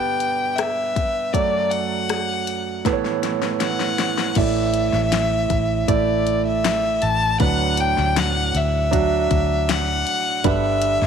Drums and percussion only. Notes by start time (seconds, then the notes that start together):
0.20 closed hi-hat
0.58 cross-stick, closed hi-hat
0.96 kick, closed hi-hat
1.34 kick, closed hi-hat
1.71 closed hi-hat
2.09 cross-stick, closed hi-hat
2.47 closed hi-hat
2.85 kick, snare, closed hi-hat
3.05 snare
3.23 snare, closed hi-hat
3.42 snare
3.60 snare, closed hi-hat
3.80 snare
3.98 snare, closed hi-hat
4.18 snare
4.35 kick, closed hi-hat, crash
4.74 closed hi-hat
4.93 snare
5.12 snare, closed hi-hat
5.50 kick, closed hi-hat
5.88 kick, closed hi-hat
6.27 closed hi-hat
6.65 snare, closed hi-hat
7.02 closed hi-hat
7.40 kick, closed hi-hat
7.77 closed hi-hat
7.98 snare
8.16 snare, closed hi-hat
8.55 closed hi-hat
8.93 kick, closed hi-hat
9.31 kick, closed hi-hat
9.69 snare, closed hi-hat
10.07 closed hi-hat
10.44 kick, closed hi-hat
10.82 closed hi-hat
11.02 snare